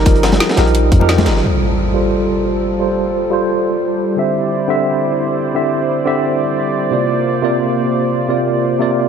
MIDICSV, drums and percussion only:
0, 0, Header, 1, 2, 480
1, 0, Start_track
1, 0, Key_signature, -2, "minor"
1, 0, Tempo, 342857
1, 85, Time_signature, 4, 2, 24, 8
1, 12720, End_track
2, 0, Start_track
2, 0, Title_t, "Drums"
2, 79, Note_on_c, 9, 42, 89
2, 84, Note_off_c, 9, 42, 0
2, 84, Note_on_c, 9, 42, 101
2, 85, Note_on_c, 9, 36, 112
2, 89, Note_on_c, 9, 62, 34
2, 215, Note_off_c, 9, 42, 0
2, 215, Note_on_c, 9, 42, 48
2, 225, Note_off_c, 9, 36, 0
2, 229, Note_off_c, 9, 62, 0
2, 325, Note_off_c, 9, 42, 0
2, 325, Note_on_c, 9, 38, 36
2, 325, Note_on_c, 9, 40, 36
2, 325, Note_on_c, 9, 42, 70
2, 331, Note_off_c, 9, 42, 0
2, 331, Note_on_c, 9, 42, 85
2, 332, Note_off_c, 9, 38, 0
2, 332, Note_on_c, 9, 38, 105
2, 452, Note_on_c, 9, 63, 63
2, 453, Note_off_c, 9, 38, 0
2, 453, Note_on_c, 9, 38, 107
2, 457, Note_off_c, 9, 42, 0
2, 457, Note_on_c, 9, 42, 79
2, 465, Note_off_c, 9, 40, 0
2, 565, Note_off_c, 9, 38, 0
2, 565, Note_off_c, 9, 42, 0
2, 565, Note_on_c, 9, 38, 114
2, 565, Note_on_c, 9, 42, 97
2, 566, Note_off_c, 9, 38, 0
2, 566, Note_on_c, 9, 38, 94
2, 573, Note_off_c, 9, 42, 0
2, 573, Note_on_c, 9, 42, 70
2, 592, Note_off_c, 9, 63, 0
2, 689, Note_off_c, 9, 42, 0
2, 689, Note_on_c, 9, 42, 75
2, 691, Note_on_c, 9, 40, 49
2, 705, Note_off_c, 9, 38, 0
2, 705, Note_on_c, 9, 38, 114
2, 797, Note_off_c, 9, 42, 0
2, 797, Note_on_c, 9, 42, 73
2, 799, Note_off_c, 9, 38, 0
2, 799, Note_on_c, 9, 38, 102
2, 805, Note_off_c, 9, 40, 0
2, 805, Note_off_c, 9, 42, 0
2, 805, Note_on_c, 9, 40, 48
2, 805, Note_on_c, 9, 42, 69
2, 939, Note_off_c, 9, 38, 0
2, 939, Note_off_c, 9, 42, 0
2, 939, Note_on_c, 9, 42, 43
2, 945, Note_off_c, 9, 40, 0
2, 1045, Note_off_c, 9, 42, 0
2, 1045, Note_on_c, 9, 42, 99
2, 1185, Note_off_c, 9, 42, 0
2, 1285, Note_on_c, 9, 42, 70
2, 1286, Note_on_c, 9, 36, 102
2, 1289, Note_off_c, 9, 42, 0
2, 1289, Note_on_c, 9, 42, 73
2, 1417, Note_on_c, 9, 62, 47
2, 1426, Note_off_c, 9, 36, 0
2, 1429, Note_off_c, 9, 42, 0
2, 1523, Note_on_c, 9, 38, 107
2, 1523, Note_on_c, 9, 42, 78
2, 1524, Note_off_c, 9, 38, 0
2, 1524, Note_off_c, 9, 42, 0
2, 1524, Note_on_c, 9, 38, 119
2, 1524, Note_on_c, 9, 42, 99
2, 1557, Note_off_c, 9, 62, 0
2, 1652, Note_off_c, 9, 38, 0
2, 1652, Note_on_c, 9, 38, 96
2, 1654, Note_off_c, 9, 42, 0
2, 1654, Note_on_c, 9, 42, 73
2, 1657, Note_on_c, 9, 63, 100
2, 1758, Note_off_c, 9, 38, 0
2, 1758, Note_on_c, 9, 38, 91
2, 1763, Note_off_c, 9, 42, 0
2, 1763, Note_on_c, 9, 42, 74
2, 1764, Note_off_c, 9, 42, 0
2, 1764, Note_on_c, 9, 40, 34
2, 1764, Note_on_c, 9, 42, 70
2, 1768, Note_on_c, 9, 62, 32
2, 1797, Note_off_c, 9, 63, 0
2, 1898, Note_off_c, 9, 38, 0
2, 1898, Note_on_c, 9, 38, 50
2, 1904, Note_off_c, 9, 40, 0
2, 1904, Note_off_c, 9, 42, 0
2, 1908, Note_off_c, 9, 62, 0
2, 2038, Note_off_c, 9, 38, 0
2, 12720, End_track
0, 0, End_of_file